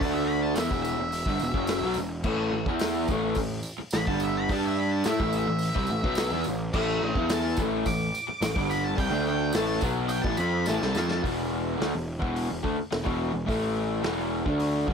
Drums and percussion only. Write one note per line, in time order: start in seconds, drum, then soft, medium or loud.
0.01 kick loud
0.01 open hi-hat medium
0.01 tambourine soft
0.30 tambourine soft
0.56 snare loud
0.56 open hi-hat medium
0.56 tambourine medium
0.71 kick loud
0.85 tambourine medium
1.12 open hi-hat medium
1.12 tambourine medium
1.26 kick loud
1.39 tambourine medium
1.54 kick loud
1.67 snare loud
1.67 open hi-hat medium
1.67 tambourine medium
1.94 tambourine medium
2.24 kick loud
2.24 crash loud
2.24 tambourine soft
2.66 kick loud
2.79 snare loud
2.79 open hi-hat medium
2.79 tambourine medium
3.08 kick loud
3.08 tambourine medium
3.35 kick loud
3.35 open hi-hat medium
3.35 tambourine medium
3.63 tambourine medium
3.91 snare loud
3.91 open hi-hat medium
3.91 tambourine loud
4.07 kick loud
4.20 tambourine medium
4.49 kick loud
4.49 open hi-hat medium
4.49 tambourine soft
5.04 snare loud
5.04 open hi-hat medium
5.04 tambourine loud
5.20 kick loud
5.33 tambourine medium
5.59 open hi-hat medium
5.59 tambourine medium
5.76 kick loud
5.87 tambourine medium
6.04 kick loud
6.15 snare loud
6.15 open hi-hat medium
6.15 tambourine medium
6.44 tambourine medium
6.73 kick loud
6.73 crash loud
6.73 tambourine soft
7.15 kick loud
7.29 snare loud
7.29 open hi-hat medium
7.29 tambourine medium
7.57 kick loud
7.57 tambourine medium
7.86 kick medium
7.86 open hi-hat medium
7.86 tambourine medium
8.15 tambourine medium
8.42 snare loud
8.42 open hi-hat medium
8.42 tambourine loud
8.56 kick loud
8.71 tambourine medium
8.98 kick loud
8.98 open hi-hat medium
8.98 tambourine soft
9.27 tambourine soft
9.53 snare loud
9.53 open hi-hat medium
9.53 tambourine medium
9.81 kick loud
9.81 tambourine medium
10.09 open hi-hat medium
10.09 tambourine medium
10.24 kick loud
10.37 tambourine medium
10.66 snare medium
10.66 tambourine medium
10.82 snare medium
10.95 snare medium
10.95 tambourine medium
11.11 snare loud
11.24 kick loud
11.24 open hi-hat medium
11.81 snare loud
11.81 open hi-hat medium
12.22 kick loud
12.36 open hi-hat medium
12.64 kick medium
12.92 snare loud
12.92 open hi-hat medium
13.06 kick loud
13.49 kick loud
13.49 open hi-hat medium
14.04 snare loud
14.04 open hi-hat medium
14.46 kick loud
14.60 open hi-hat medium
14.88 kick loud